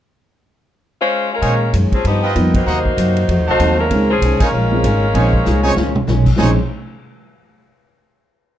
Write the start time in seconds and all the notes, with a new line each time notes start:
1.01 G#3 C#4 F4 C5
1.32 G#3 C#4 F4 A#4
1.41 A#2 D#3 G#3 C#4 D#4 C5 C#5 G#5, kick, ride
1.73 F#2 A#2 D#3 G#3 C#4, kick, hi-hat pedal, ride
1.92 F3 C4 C#4 G#4, muted upright bass stroke, kick, ride
2.04 G2 F3 B3 D#4 G4, kick, ride
2.23 F4 B4 D#5 G5
2.35 F2 G2 F3 A#3 B3 D#4, kick, hi-hat pedal, ride
2.54 A#3 D#4 F#4 C5, kick, ride
2.66 D#2 C3 F#3 A#3 D#4 F#4 C5 D#5 A#5
2.85 kick
2.97 F#2 C3 F#3 A#3 D#4, kick, hi-hat pedal, ride
3.17 ride
3.28 F2 F3 A3 D#4 F#4, kick, ride
3.39 D#2
3.47 C2 A3 D#4 F#4 C5 D#5 F5 A5
3.59 D#2 F3 F#3 A3 C4 D#4 F#4, kick, hi-hat pedal, ride
3.79 G#3 C#4 F4 A#4
3.90 C#2 A#2 D#3 G#3 C4 C#4 D#4, kick, ride
4.10 F3 C4 C#4 G#4
4.21 C2 A#2 D#3 G#3 C#4, kick, hi-hat pedal, ride
4.40 G#3 C#4 D#4 F4 A#4 C5 C#5 G#5, kick, ride
4.52 A#1 A#2 D#3 G#3
4.56 C#4
4.72 G#3 C4 C#4 F4
4.84 G#1 A#2 D#3 G#3 C#4, kick, hi-hat pedal, ride
5.13 A#1 A#2 D#3 G#3 C4 C#4 D#4 C5 C#5 G#5, kick, ride
5.33 kick
5.45 C2 A#2 D#3 G#3 C#4, snare, hi-hat pedal
5.63 G#3 C4 C#4 D#4 F4 C5 C#5 G#5
5.76 C#2 A#2 D#3 G#3 C#4, snare
5.95 mid tom
6.07 B1 A#2 D#3 G#3 C#4, snare, hi-hat pedal
6.26 kick, crash
6.38 A#1 A#2 D#3 G#3 C4 C#4 D#4 C5 C#5 G#5, snare